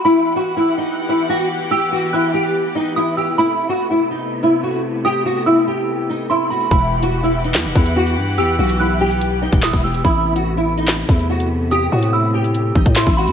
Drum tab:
HH |----------------|----------------|----------------|----------------|
CP |----------------|----------------|----------------|----------------|
SD |----------------|----------------|----------------|----------------|
BD |----------------|----------------|----------------|----------------|

HH |x--x---x--xx-x--|x--x---xx--x---x|x--x---x--xx-x--|x--x---xx--x---x|
CP |--------x-------|------------x---|--------x-------|------------x---|
SD |--------o-------|------------o---|--------o-------|------------o---|
BD |o---------o-----|-----------o-o--|o---------o-----|----------oo-o--|